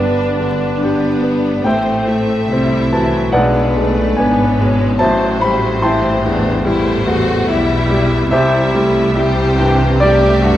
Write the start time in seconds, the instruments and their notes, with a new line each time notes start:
Already playing: double bass section G1, cello section G2, grand piano G2 D3 B3 D4 G4 B4 D5 G5 A5 B5, viola section D4, violin section B4
0.00 violin section D4
0.40 grand piano D3, violin section B4
0.80 viola section B3, violin section D4, grand piano D4 G4
1.22 grand piano B3
1.64 double bass section A1, grand piano A2 C5 E5 G5, cello section A2, viola section A3, violin section C4 C5
2.07 grand piano A3, violin section E5
2.50 double bass section C2, cello section C3, viola section G3, grand piano C4 C5, violin section E4
2.91 grand piano E3 A5, viola section F#3
3.32 grand piano B1 B4 D5 F#5, double bass section B1, cello section B2, viola section G#3, violin section D4 B4
3.75 grand piano G#3, viola section A3
4.17 double bass section G#1, cello section G#2, viola section B3, violin section C#4, grand piano D4 B4 D5 G#5
4.59 grand piano B2, viola section G#3
4.99 grand piano A1 C5 E5 A5, double bass section A1, cello section A2, viola section F#3, violin section C4 C5
5.41 grand piano G3 B5
5.82 viola section E3, violin section C4, grand piano E4 E5 G5 A5 C6
6.25 grand piano E2, violin section D4
6.64 grand piano G3, viola section A3, violin section E4 C5
7.06 grand piano E2, violin section F#4
7.48 double bass section B1, cello section B2, viola section G3, grand piano E4 E5, violin section E4 E5
7.90 grand piano G3
8.31 grand piano C2 G4 C5 E5, double bass section C2, cello section C3, viola section G3, violin section E4 E5
8.73 grand piano G3, viola section A3
9.15 viola section G3, grand piano E4 E5, violin section G4 C5
9.57 grand piano G2 G5, viola section E3
10.00 grand piano G3 G4 D5, viola section A3, violin section G4 E5
10.42 grand piano G2, violin section F#4